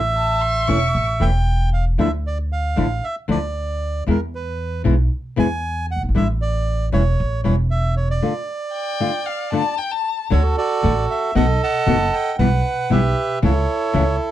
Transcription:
Already playing: A1 E5
0.15 A5
0.41 C6
0.67 E1 E3 A3 C#4 E4 C#6
0.95 A1
1.20 E1 E3 A3 C#4 E4 G5
1.73 F5
1.98 D2 D3 F3 A3 D4 E4 E5
2.27 D5
2.52 F5
2.76 A1 D3 F3 A3 D4 E4
3.04 E5
3.28 D2 D3 F3 A3 D4 E4 D5
4.07 E2 B2 E3 G#3 B3 E4 A#4
4.35 B4
4.84 B1 B2 E3 G#3 B3 E4
5.36 E2 B2 E3 G#3 B3 E4 G#5
5.91 F#5
5.96 F#1
6.03 G1
6.09 G#1
6.15 A1 D3 G3 D4 E4 E5
6.41 D5
6.92 E1 E3 G3 C#4 E4 C#5
7.20 A1
7.44 E1 E3 G3 C#4 E4 C#5
7.71 E5
7.97 C#5
8.10 D5
8.22 D3 A3 D4 F4
8.74 G5
9.00 D3 A3 D4 F4
9.26 F5
9.52 D3 A3 D4 F4 A5
9.78 G5
9.91 A5
10.30 D2 D3 A3 D4 F#4 A4 C#5
10.58 F#4 A4 D5
10.83 A1 D3 A3 D4 F#4
11.11 E5
11.35 B1 B2 D#3 A3 B3 F#4 A4 D#5 F#5
11.63 D#5 F#5 A5
11.86 F#1 B2 D#3 A3 B3 F#4
12.13 G5
12.38 B1 B2 E3 G3 B3 E4 B4 F#5
12.90 B1 B2 E3 G3 B3 E4 G4 B4 E5
13.42 C#2 C#3 E3 A3 C#4 E4 A4 C#5
13.93 C#2 C#3 E3 A3 C#4 E4

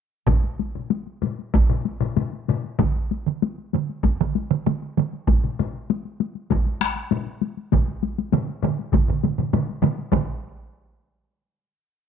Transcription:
0.27 taiko, taiko low-mid, taiko high
0.43 taiko high
0.59 taiko high
0.75 taiko low-mid
0.90 taiko high
1.07 taiko high
1.22 taiko low-mid, taiko high
1.39 taiko high
1.54 taiko, taiko high
1.69 taiko low-mid
1.85 taiko high
2.00 taiko low-mid, taiko high
2.17 taiko low-mid, taiko high
2.33 taiko high
2.48 taiko low-mid, taiko high
2.64 taiko high
2.79 taiko, taiko mid, taiko high
2.96 taiko high
3.11 taiko high
3.26 taiko mid
3.42 taiko high
3.58 taiko high
3.73 taiko mid, taiko high
3.89 taiko high
4.03 taiko, taiko high
4.20 taiko mid, taiko high
4.35 taiko high
4.51 taiko mid, taiko high
4.67 taiko mid, taiko high
4.82 taiko high
4.97 taiko mid, taiko high
5.13 taiko high
5.27 taiko, taiko low-mid, taiko high
5.44 taiko low-mid, taiko high
5.59 taiko low-mid, taiko high
5.90 taiko high
6.05 taiko high
6.20 taiko high
6.35 taiko high
6.51 taiko, taiko low-mid, taiko high
6.66 taiko high
6.81 taiko rim, taiko high
6.96 taiko high
7.11 taiko low-mid, taiko high
7.26 taiko high
7.42 taiko high
7.57 taiko high
7.72 taiko, taiko low-mid, taiko mid, taiko high
7.88 taiko high
8.03 taiko high
8.18 taiko high
8.32 taiko low-mid, taiko mid, taiko high
8.49 taiko high
8.63 taiko low-mid, taiko mid, taiko high
8.79 taiko high
8.92 taiko, taiko low-mid, taiko mid, taiko high
9.08 taiko low-mid, taiko mid, taiko high
9.23 taiko low-mid, taiko mid, taiko high
9.38 taiko low-mid, taiko mid, taiko high
9.53 taiko low-mid, taiko mid, taiko high
9.69 taiko high
9.83 taiko low-mid, taiko mid, taiko high
9.98 taiko high
10.12 taiko, taiko low-mid, taiko mid, taiko high

